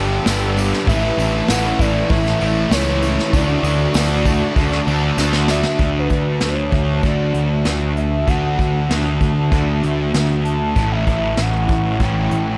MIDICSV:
0, 0, Header, 1, 8, 480
1, 0, Start_track
1, 0, Key_signature, 2, "major"
1, 0, Tempo, 617920
1, 680, Time_signature, 4, 2, 24, 8
1, 9770, End_track
2, 0, Start_track
2, 0, Title_t, "Ambient pad"
2, 0, Program_c, 0, 92
2, 0, Note_on_c, 0, 67, 80
2, 0, Note_on_c, 0, 71, 73
2, 0, Note_on_c, 0, 81, 67
2, 0, Note_on_c, 0, 88, 91
2, 652, Note_off_c, 0, 81, 0
2, 653, Note_off_c, 0, 67, 0
2, 668, Note_off_c, 0, 88, 0
2, 685, Note_on_c, 0, 64, 81
2, 688, Note_on_c, 0, 81, 69
2, 695, Note_on_c, 0, 85, 89
2, 2566, Note_off_c, 0, 71, 0
2, 2574, Note_off_c, 0, 81, 0
2, 2575, Note_off_c, 0, 64, 0
2, 2583, Note_on_c, 0, 81, 73
2, 2588, Note_on_c, 0, 74, 74
2, 2589, Note_on_c, 0, 66, 84
2, 4486, Note_off_c, 0, 81, 0
2, 4486, Note_off_c, 0, 85, 0
2, 4489, Note_off_c, 0, 66, 0
2, 4489, Note_off_c, 0, 74, 0
2, 4500, Note_on_c, 0, 66, 80
2, 4505, Note_on_c, 0, 76, 71
2, 4506, Note_on_c, 0, 81, 65
2, 8325, Note_off_c, 0, 66, 0
2, 8328, Note_off_c, 0, 76, 0
2, 8329, Note_off_c, 0, 81, 0
2, 8355, Note_on_c, 0, 85, 90
2, 8359, Note_on_c, 0, 64, 79
2, 8364, Note_on_c, 0, 73, 69
2, 8365, Note_on_c, 0, 81, 69
2, 9770, Note_off_c, 0, 64, 0
2, 9770, Note_off_c, 0, 73, 0
2, 9770, Note_off_c, 0, 81, 0
2, 9770, Note_off_c, 0, 85, 0
2, 9770, End_track
3, 0, Start_track
3, 0, Title_t, "Soft synth lead"
3, 0, Program_c, 1, 80
3, 0, Note_on_c, 1, 79, 92
3, 448, Note_off_c, 1, 79, 0
3, 673, Note_on_c, 1, 76, 116
3, 1150, Note_on_c, 1, 78, 109
3, 1162, Note_off_c, 1, 76, 0
3, 1397, Note_on_c, 1, 74, 98
3, 1408, Note_off_c, 1, 78, 0
3, 1627, Note_on_c, 1, 76, 115
3, 1639, Note_off_c, 1, 74, 0
3, 2114, Note_on_c, 1, 73, 94
3, 2126, Note_off_c, 1, 76, 0
3, 2592, Note_off_c, 1, 73, 0
3, 2604, Note_on_c, 1, 74, 104
3, 4005, Note_off_c, 1, 74, 0
3, 4267, Note_on_c, 1, 76, 108
3, 4603, Note_off_c, 1, 76, 0
3, 4648, Note_on_c, 1, 71, 92
3, 5004, Note_on_c, 1, 73, 97
3, 5016, Note_off_c, 1, 71, 0
3, 5479, Note_on_c, 1, 74, 86
3, 5490, Note_off_c, 1, 73, 0
3, 5957, Note_off_c, 1, 74, 0
3, 6192, Note_on_c, 1, 76, 96
3, 6436, Note_on_c, 1, 78, 118
3, 6448, Note_off_c, 1, 76, 0
3, 6917, Note_off_c, 1, 78, 0
3, 8110, Note_on_c, 1, 81, 112
3, 8481, Note_on_c, 1, 76, 94
3, 8492, Note_off_c, 1, 81, 0
3, 8868, Note_on_c, 1, 78, 96
3, 8880, Note_off_c, 1, 76, 0
3, 9330, Note_on_c, 1, 79, 89
3, 9342, Note_off_c, 1, 78, 0
3, 9770, Note_off_c, 1, 79, 0
3, 9770, End_track
4, 0, Start_track
4, 0, Title_t, "Overdriven electric guitar"
4, 0, Program_c, 2, 29
4, 0, Note_on_c, 2, 43, 94
4, 0, Note_on_c, 2, 50, 106
4, 0, Note_on_c, 2, 55, 61
4, 0, Note_on_c, 2, 59, 60
4, 0, Note_on_c, 2, 62, 71
4, 197, Note_off_c, 2, 50, 0
4, 201, Note_off_c, 2, 55, 0
4, 204, Note_off_c, 2, 43, 0
4, 206, Note_on_c, 2, 50, 78
4, 207, Note_off_c, 2, 59, 0
4, 210, Note_on_c, 2, 55, 76
4, 214, Note_off_c, 2, 62, 0
4, 216, Note_on_c, 2, 59, 95
4, 223, Note_on_c, 2, 62, 86
4, 427, Note_off_c, 2, 62, 0
4, 437, Note_on_c, 2, 62, 73
4, 439, Note_off_c, 2, 59, 0
4, 443, Note_off_c, 2, 55, 0
4, 448, Note_on_c, 2, 59, 79
4, 452, Note_on_c, 2, 55, 68
4, 663, Note_off_c, 2, 62, 0
4, 668, Note_off_c, 2, 50, 0
4, 669, Note_off_c, 2, 59, 0
4, 671, Note_off_c, 2, 55, 0
4, 678, Note_on_c, 2, 45, 106
4, 684, Note_on_c, 2, 52, 107
4, 688, Note_on_c, 2, 57, 104
4, 691, Note_on_c, 2, 61, 109
4, 696, Note_on_c, 2, 64, 121
4, 919, Note_off_c, 2, 64, 0
4, 928, Note_on_c, 2, 64, 81
4, 933, Note_off_c, 2, 61, 0
4, 936, Note_on_c, 2, 61, 73
4, 939, Note_off_c, 2, 57, 0
4, 942, Note_on_c, 2, 57, 70
4, 1143, Note_off_c, 2, 52, 0
4, 1152, Note_on_c, 2, 52, 87
4, 1155, Note_off_c, 2, 57, 0
4, 1156, Note_off_c, 2, 45, 0
4, 1158, Note_on_c, 2, 57, 78
4, 1160, Note_off_c, 2, 61, 0
4, 1162, Note_off_c, 2, 64, 0
4, 1163, Note_on_c, 2, 61, 92
4, 1171, Note_on_c, 2, 64, 95
4, 1382, Note_off_c, 2, 64, 0
4, 1391, Note_on_c, 2, 64, 67
4, 1400, Note_off_c, 2, 61, 0
4, 1403, Note_on_c, 2, 61, 68
4, 1407, Note_off_c, 2, 57, 0
4, 1410, Note_on_c, 2, 57, 57
4, 1632, Note_off_c, 2, 52, 0
4, 1635, Note_on_c, 2, 45, 95
4, 1639, Note_off_c, 2, 61, 0
4, 1643, Note_off_c, 2, 64, 0
4, 1644, Note_off_c, 2, 57, 0
4, 1644, Note_on_c, 2, 52, 100
4, 1647, Note_on_c, 2, 57, 95
4, 1648, Note_on_c, 2, 61, 98
4, 1653, Note_on_c, 2, 64, 107
4, 1869, Note_off_c, 2, 64, 0
4, 1878, Note_on_c, 2, 64, 79
4, 1880, Note_off_c, 2, 61, 0
4, 1890, Note_on_c, 2, 61, 64
4, 1894, Note_off_c, 2, 57, 0
4, 1897, Note_on_c, 2, 57, 61
4, 2102, Note_off_c, 2, 52, 0
4, 2111, Note_on_c, 2, 52, 81
4, 2113, Note_off_c, 2, 45, 0
4, 2114, Note_off_c, 2, 61, 0
4, 2116, Note_off_c, 2, 57, 0
4, 2116, Note_off_c, 2, 64, 0
4, 2119, Note_on_c, 2, 57, 88
4, 2124, Note_on_c, 2, 61, 85
4, 2125, Note_on_c, 2, 64, 88
4, 2337, Note_off_c, 2, 64, 0
4, 2341, Note_off_c, 2, 61, 0
4, 2347, Note_on_c, 2, 64, 77
4, 2351, Note_on_c, 2, 61, 80
4, 2358, Note_off_c, 2, 57, 0
4, 2362, Note_on_c, 2, 57, 69
4, 2574, Note_off_c, 2, 64, 0
4, 2576, Note_off_c, 2, 52, 0
4, 2576, Note_off_c, 2, 61, 0
4, 2592, Note_on_c, 2, 50, 102
4, 2596, Note_off_c, 2, 57, 0
4, 2599, Note_on_c, 2, 57, 109
4, 2600, Note_on_c, 2, 62, 102
4, 2612, Note_on_c, 2, 66, 114
4, 2815, Note_off_c, 2, 66, 0
4, 2824, Note_on_c, 2, 66, 84
4, 2829, Note_off_c, 2, 62, 0
4, 2834, Note_off_c, 2, 57, 0
4, 2838, Note_on_c, 2, 62, 64
4, 2843, Note_on_c, 2, 57, 71
4, 3051, Note_off_c, 2, 50, 0
4, 3058, Note_off_c, 2, 57, 0
4, 3060, Note_on_c, 2, 50, 78
4, 3061, Note_off_c, 2, 62, 0
4, 3067, Note_on_c, 2, 57, 85
4, 3068, Note_off_c, 2, 66, 0
4, 3070, Note_on_c, 2, 62, 80
4, 3077, Note_on_c, 2, 66, 94
4, 3299, Note_off_c, 2, 66, 0
4, 3306, Note_off_c, 2, 62, 0
4, 3308, Note_on_c, 2, 66, 78
4, 3315, Note_on_c, 2, 62, 70
4, 3316, Note_off_c, 2, 57, 0
4, 3325, Note_on_c, 2, 57, 64
4, 3533, Note_off_c, 2, 50, 0
4, 3538, Note_off_c, 2, 57, 0
4, 3542, Note_on_c, 2, 50, 97
4, 3546, Note_off_c, 2, 62, 0
4, 3548, Note_off_c, 2, 66, 0
4, 3548, Note_on_c, 2, 57, 91
4, 3556, Note_on_c, 2, 62, 103
4, 3558, Note_on_c, 2, 66, 105
4, 3781, Note_off_c, 2, 66, 0
4, 3790, Note_off_c, 2, 62, 0
4, 3790, Note_on_c, 2, 66, 75
4, 3797, Note_off_c, 2, 57, 0
4, 3799, Note_on_c, 2, 62, 58
4, 3806, Note_on_c, 2, 57, 61
4, 4020, Note_off_c, 2, 50, 0
4, 4026, Note_off_c, 2, 57, 0
4, 4028, Note_off_c, 2, 62, 0
4, 4029, Note_on_c, 2, 50, 77
4, 4034, Note_off_c, 2, 66, 0
4, 4035, Note_on_c, 2, 57, 80
4, 4037, Note_on_c, 2, 62, 91
4, 4044, Note_on_c, 2, 66, 81
4, 4251, Note_off_c, 2, 66, 0
4, 4260, Note_off_c, 2, 62, 0
4, 4260, Note_on_c, 2, 66, 81
4, 4268, Note_off_c, 2, 57, 0
4, 4269, Note_on_c, 2, 62, 73
4, 4277, Note_on_c, 2, 57, 67
4, 4490, Note_off_c, 2, 50, 0
4, 4491, Note_off_c, 2, 66, 0
4, 4495, Note_off_c, 2, 62, 0
4, 4499, Note_off_c, 2, 57, 0
4, 4500, Note_on_c, 2, 50, 90
4, 4510, Note_on_c, 2, 57, 87
4, 4515, Note_on_c, 2, 62, 98
4, 4522, Note_on_c, 2, 66, 94
4, 5457, Note_off_c, 2, 50, 0
4, 5460, Note_on_c, 2, 50, 72
4, 5465, Note_off_c, 2, 57, 0
4, 5469, Note_on_c, 2, 57, 71
4, 5471, Note_off_c, 2, 62, 0
4, 5474, Note_off_c, 2, 66, 0
4, 5474, Note_on_c, 2, 62, 79
4, 5477, Note_on_c, 2, 66, 83
4, 6412, Note_off_c, 2, 50, 0
4, 6421, Note_off_c, 2, 62, 0
4, 6421, Note_on_c, 2, 50, 87
4, 6423, Note_off_c, 2, 66, 0
4, 6425, Note_off_c, 2, 57, 0
4, 6428, Note_on_c, 2, 57, 95
4, 6437, Note_on_c, 2, 62, 106
4, 6442, Note_on_c, 2, 66, 91
4, 7377, Note_off_c, 2, 50, 0
4, 7385, Note_off_c, 2, 62, 0
4, 7387, Note_off_c, 2, 66, 0
4, 7388, Note_on_c, 2, 50, 75
4, 7391, Note_off_c, 2, 57, 0
4, 7394, Note_on_c, 2, 57, 81
4, 7400, Note_on_c, 2, 62, 81
4, 7401, Note_on_c, 2, 66, 85
4, 8342, Note_off_c, 2, 50, 0
4, 8345, Note_off_c, 2, 57, 0
4, 8348, Note_off_c, 2, 62, 0
4, 8348, Note_off_c, 2, 66, 0
4, 8360, Note_on_c, 2, 45, 93
4, 8364, Note_on_c, 2, 52, 96
4, 8370, Note_on_c, 2, 61, 104
4, 8373, Note_on_c, 2, 57, 95
4, 8378, Note_on_c, 2, 64, 101
4, 9308, Note_off_c, 2, 45, 0
4, 9310, Note_off_c, 2, 52, 0
4, 9313, Note_off_c, 2, 61, 0
4, 9315, Note_off_c, 2, 57, 0
4, 9317, Note_off_c, 2, 64, 0
4, 9332, Note_on_c, 2, 45, 75
4, 9341, Note_on_c, 2, 52, 68
4, 9341, Note_on_c, 2, 57, 77
4, 9347, Note_on_c, 2, 61, 77
4, 9352, Note_on_c, 2, 64, 83
4, 9770, Note_off_c, 2, 45, 0
4, 9770, Note_off_c, 2, 52, 0
4, 9770, Note_off_c, 2, 57, 0
4, 9770, Note_off_c, 2, 61, 0
4, 9770, Note_off_c, 2, 64, 0
4, 9770, End_track
5, 0, Start_track
5, 0, Title_t, "Overdriven electric guitar"
5, 0, Program_c, 3, 29
5, 0, Note_on_c, 3, 55, 99
5, 0, Note_on_c, 3, 59, 97
5, 0, Note_on_c, 3, 62, 96
5, 205, Note_off_c, 3, 55, 0
5, 216, Note_off_c, 3, 59, 0
5, 220, Note_off_c, 3, 62, 0
5, 9770, End_track
6, 0, Start_track
6, 0, Title_t, "Overdriven electric guitar"
6, 0, Program_c, 4, 29
6, 0, Note_on_c, 4, 43, 75
6, 0, Note_on_c, 4, 50, 76
6, 186, Note_off_c, 4, 43, 0
6, 193, Note_off_c, 4, 50, 0
6, 196, Note_on_c, 4, 43, 87
6, 662, Note_off_c, 4, 43, 0
6, 1861, Note_on_c, 4, 57, 92
6, 1870, Note_on_c, 4, 52, 74
6, 1879, Note_on_c, 4, 45, 74
6, 2093, Note_off_c, 4, 45, 0
6, 2097, Note_off_c, 4, 52, 0
6, 2103, Note_on_c, 4, 45, 85
6, 2117, Note_off_c, 4, 57, 0
6, 2572, Note_off_c, 4, 45, 0
6, 3801, Note_on_c, 4, 50, 75
6, 4021, Note_off_c, 4, 50, 0
6, 9770, End_track
7, 0, Start_track
7, 0, Title_t, "Picked electric bass"
7, 0, Program_c, 5, 34
7, 0, Note_on_c, 5, 31, 88
7, 140, Note_off_c, 5, 31, 0
7, 204, Note_on_c, 5, 31, 88
7, 557, Note_off_c, 5, 31, 0
7, 679, Note_on_c, 5, 33, 94
7, 857, Note_off_c, 5, 33, 0
7, 913, Note_on_c, 5, 33, 89
7, 1092, Note_off_c, 5, 33, 0
7, 1156, Note_on_c, 5, 33, 95
7, 1334, Note_off_c, 5, 33, 0
7, 1395, Note_on_c, 5, 33, 88
7, 1573, Note_off_c, 5, 33, 0
7, 1635, Note_on_c, 5, 33, 93
7, 1812, Note_off_c, 5, 33, 0
7, 1873, Note_on_c, 5, 33, 93
7, 2051, Note_off_c, 5, 33, 0
7, 2105, Note_on_c, 5, 37, 90
7, 2463, Note_off_c, 5, 37, 0
7, 2590, Note_on_c, 5, 38, 88
7, 2768, Note_off_c, 5, 38, 0
7, 2819, Note_on_c, 5, 38, 94
7, 3001, Note_off_c, 5, 38, 0
7, 3065, Note_on_c, 5, 38, 94
7, 3423, Note_off_c, 5, 38, 0
7, 3544, Note_on_c, 5, 38, 93
7, 3724, Note_off_c, 5, 38, 0
7, 3783, Note_on_c, 5, 38, 85
7, 3963, Note_off_c, 5, 38, 0
7, 4019, Note_on_c, 5, 38, 85
7, 4379, Note_off_c, 5, 38, 0
7, 4499, Note_on_c, 5, 38, 85
7, 4725, Note_off_c, 5, 38, 0
7, 4737, Note_on_c, 5, 38, 86
7, 4964, Note_off_c, 5, 38, 0
7, 4979, Note_on_c, 5, 38, 85
7, 5205, Note_off_c, 5, 38, 0
7, 5222, Note_on_c, 5, 38, 79
7, 5447, Note_off_c, 5, 38, 0
7, 5460, Note_on_c, 5, 38, 84
7, 5686, Note_off_c, 5, 38, 0
7, 5705, Note_on_c, 5, 38, 81
7, 5930, Note_off_c, 5, 38, 0
7, 5948, Note_on_c, 5, 38, 82
7, 6401, Note_off_c, 5, 38, 0
7, 6430, Note_on_c, 5, 38, 84
7, 6653, Note_off_c, 5, 38, 0
7, 6669, Note_on_c, 5, 38, 86
7, 6893, Note_off_c, 5, 38, 0
7, 6914, Note_on_c, 5, 38, 86
7, 7136, Note_off_c, 5, 38, 0
7, 7152, Note_on_c, 5, 38, 85
7, 7376, Note_off_c, 5, 38, 0
7, 7393, Note_on_c, 5, 38, 85
7, 7617, Note_off_c, 5, 38, 0
7, 7642, Note_on_c, 5, 38, 83
7, 7862, Note_off_c, 5, 38, 0
7, 7878, Note_on_c, 5, 38, 84
7, 8329, Note_off_c, 5, 38, 0
7, 8359, Note_on_c, 5, 33, 85
7, 8581, Note_off_c, 5, 33, 0
7, 8598, Note_on_c, 5, 33, 81
7, 8821, Note_off_c, 5, 33, 0
7, 8837, Note_on_c, 5, 33, 82
7, 9060, Note_off_c, 5, 33, 0
7, 9082, Note_on_c, 5, 33, 81
7, 9303, Note_off_c, 5, 33, 0
7, 9321, Note_on_c, 5, 33, 91
7, 9543, Note_off_c, 5, 33, 0
7, 9566, Note_on_c, 5, 33, 84
7, 9770, Note_off_c, 5, 33, 0
7, 9770, End_track
8, 0, Start_track
8, 0, Title_t, "Drums"
8, 202, Note_on_c, 9, 38, 107
8, 209, Note_on_c, 9, 54, 96
8, 280, Note_off_c, 9, 38, 0
8, 287, Note_off_c, 9, 54, 0
8, 439, Note_on_c, 9, 46, 69
8, 454, Note_on_c, 9, 54, 84
8, 517, Note_off_c, 9, 46, 0
8, 532, Note_off_c, 9, 54, 0
8, 569, Note_on_c, 9, 38, 33
8, 646, Note_off_c, 9, 38, 0
8, 679, Note_on_c, 9, 36, 103
8, 680, Note_on_c, 9, 46, 76
8, 695, Note_on_c, 9, 54, 76
8, 756, Note_off_c, 9, 36, 0
8, 758, Note_off_c, 9, 46, 0
8, 773, Note_off_c, 9, 54, 0
8, 922, Note_on_c, 9, 46, 67
8, 932, Note_on_c, 9, 54, 75
8, 1000, Note_off_c, 9, 46, 0
8, 1009, Note_off_c, 9, 54, 0
8, 1151, Note_on_c, 9, 46, 94
8, 1154, Note_on_c, 9, 38, 112
8, 1167, Note_on_c, 9, 54, 95
8, 1229, Note_off_c, 9, 46, 0
8, 1231, Note_off_c, 9, 38, 0
8, 1244, Note_off_c, 9, 54, 0
8, 1391, Note_on_c, 9, 46, 67
8, 1393, Note_on_c, 9, 36, 87
8, 1408, Note_on_c, 9, 54, 73
8, 1469, Note_off_c, 9, 46, 0
8, 1471, Note_off_c, 9, 36, 0
8, 1486, Note_off_c, 9, 54, 0
8, 1628, Note_on_c, 9, 46, 80
8, 1632, Note_on_c, 9, 36, 101
8, 1706, Note_off_c, 9, 46, 0
8, 1710, Note_off_c, 9, 36, 0
8, 1759, Note_on_c, 9, 38, 34
8, 1836, Note_off_c, 9, 38, 0
8, 1871, Note_on_c, 9, 46, 68
8, 1949, Note_off_c, 9, 46, 0
8, 2107, Note_on_c, 9, 46, 86
8, 2109, Note_on_c, 9, 38, 111
8, 2116, Note_on_c, 9, 54, 88
8, 2184, Note_off_c, 9, 46, 0
8, 2187, Note_off_c, 9, 38, 0
8, 2193, Note_off_c, 9, 54, 0
8, 2350, Note_on_c, 9, 54, 72
8, 2351, Note_on_c, 9, 46, 67
8, 2428, Note_off_c, 9, 46, 0
8, 2428, Note_off_c, 9, 54, 0
8, 2479, Note_on_c, 9, 38, 34
8, 2557, Note_off_c, 9, 38, 0
8, 2590, Note_on_c, 9, 36, 108
8, 2591, Note_on_c, 9, 46, 73
8, 2592, Note_on_c, 9, 54, 64
8, 2667, Note_off_c, 9, 36, 0
8, 2668, Note_off_c, 9, 46, 0
8, 2670, Note_off_c, 9, 54, 0
8, 2830, Note_on_c, 9, 54, 71
8, 2834, Note_on_c, 9, 46, 61
8, 2907, Note_off_c, 9, 54, 0
8, 2911, Note_off_c, 9, 46, 0
8, 3062, Note_on_c, 9, 54, 93
8, 3068, Note_on_c, 9, 46, 85
8, 3070, Note_on_c, 9, 38, 125
8, 3140, Note_off_c, 9, 54, 0
8, 3145, Note_off_c, 9, 46, 0
8, 3148, Note_off_c, 9, 38, 0
8, 3305, Note_on_c, 9, 36, 96
8, 3308, Note_on_c, 9, 54, 64
8, 3383, Note_off_c, 9, 36, 0
8, 3386, Note_off_c, 9, 54, 0
8, 3544, Note_on_c, 9, 36, 96
8, 3547, Note_on_c, 9, 46, 74
8, 3550, Note_on_c, 9, 54, 26
8, 3622, Note_off_c, 9, 36, 0
8, 3625, Note_off_c, 9, 46, 0
8, 3627, Note_off_c, 9, 54, 0
8, 3667, Note_on_c, 9, 38, 35
8, 3745, Note_off_c, 9, 38, 0
8, 3786, Note_on_c, 9, 46, 63
8, 3790, Note_on_c, 9, 54, 28
8, 3864, Note_off_c, 9, 46, 0
8, 3868, Note_off_c, 9, 54, 0
8, 4023, Note_on_c, 9, 38, 65
8, 4024, Note_on_c, 9, 54, 92
8, 4101, Note_off_c, 9, 38, 0
8, 4102, Note_off_c, 9, 54, 0
8, 4139, Note_on_c, 9, 38, 68
8, 4217, Note_off_c, 9, 38, 0
8, 4257, Note_on_c, 9, 38, 104
8, 4270, Note_on_c, 9, 54, 79
8, 4335, Note_off_c, 9, 38, 0
8, 4347, Note_off_c, 9, 54, 0
8, 4375, Note_on_c, 9, 38, 90
8, 4453, Note_off_c, 9, 38, 0
8, 4495, Note_on_c, 9, 42, 76
8, 4500, Note_on_c, 9, 36, 98
8, 4572, Note_off_c, 9, 42, 0
8, 4578, Note_off_c, 9, 36, 0
8, 4737, Note_on_c, 9, 42, 60
8, 4741, Note_on_c, 9, 36, 74
8, 4815, Note_off_c, 9, 42, 0
8, 4819, Note_off_c, 9, 36, 0
8, 4975, Note_on_c, 9, 42, 89
8, 4977, Note_on_c, 9, 38, 105
8, 5053, Note_off_c, 9, 42, 0
8, 5055, Note_off_c, 9, 38, 0
8, 5220, Note_on_c, 9, 42, 61
8, 5223, Note_on_c, 9, 36, 84
8, 5298, Note_off_c, 9, 42, 0
8, 5301, Note_off_c, 9, 36, 0
8, 5461, Note_on_c, 9, 42, 72
8, 5463, Note_on_c, 9, 36, 95
8, 5539, Note_off_c, 9, 42, 0
8, 5541, Note_off_c, 9, 36, 0
8, 5704, Note_on_c, 9, 42, 61
8, 5782, Note_off_c, 9, 42, 0
8, 5942, Note_on_c, 9, 42, 80
8, 5945, Note_on_c, 9, 38, 96
8, 6020, Note_off_c, 9, 42, 0
8, 6022, Note_off_c, 9, 38, 0
8, 6189, Note_on_c, 9, 42, 58
8, 6266, Note_off_c, 9, 42, 0
8, 6428, Note_on_c, 9, 42, 73
8, 6429, Note_on_c, 9, 36, 91
8, 6506, Note_off_c, 9, 36, 0
8, 6506, Note_off_c, 9, 42, 0
8, 6672, Note_on_c, 9, 36, 73
8, 6675, Note_on_c, 9, 42, 58
8, 6749, Note_off_c, 9, 36, 0
8, 6753, Note_off_c, 9, 42, 0
8, 6917, Note_on_c, 9, 42, 76
8, 6919, Note_on_c, 9, 38, 107
8, 6994, Note_off_c, 9, 42, 0
8, 6997, Note_off_c, 9, 38, 0
8, 7153, Note_on_c, 9, 36, 76
8, 7155, Note_on_c, 9, 42, 57
8, 7231, Note_off_c, 9, 36, 0
8, 7232, Note_off_c, 9, 42, 0
8, 7395, Note_on_c, 9, 36, 94
8, 7395, Note_on_c, 9, 42, 69
8, 7472, Note_off_c, 9, 36, 0
8, 7473, Note_off_c, 9, 42, 0
8, 7639, Note_on_c, 9, 42, 61
8, 7716, Note_off_c, 9, 42, 0
8, 7877, Note_on_c, 9, 42, 78
8, 7880, Note_on_c, 9, 38, 100
8, 7955, Note_off_c, 9, 42, 0
8, 7957, Note_off_c, 9, 38, 0
8, 8119, Note_on_c, 9, 42, 63
8, 8197, Note_off_c, 9, 42, 0
8, 8357, Note_on_c, 9, 42, 76
8, 8359, Note_on_c, 9, 36, 96
8, 8435, Note_off_c, 9, 42, 0
8, 8437, Note_off_c, 9, 36, 0
8, 8598, Note_on_c, 9, 42, 62
8, 8600, Note_on_c, 9, 36, 74
8, 8676, Note_off_c, 9, 42, 0
8, 8678, Note_off_c, 9, 36, 0
8, 8832, Note_on_c, 9, 42, 85
8, 8835, Note_on_c, 9, 38, 102
8, 8910, Note_off_c, 9, 42, 0
8, 8912, Note_off_c, 9, 38, 0
8, 9078, Note_on_c, 9, 42, 66
8, 9082, Note_on_c, 9, 36, 81
8, 9156, Note_off_c, 9, 42, 0
8, 9160, Note_off_c, 9, 36, 0
8, 9320, Note_on_c, 9, 42, 75
8, 9323, Note_on_c, 9, 36, 93
8, 9397, Note_off_c, 9, 42, 0
8, 9401, Note_off_c, 9, 36, 0
8, 9564, Note_on_c, 9, 42, 62
8, 9641, Note_off_c, 9, 42, 0
8, 9770, End_track
0, 0, End_of_file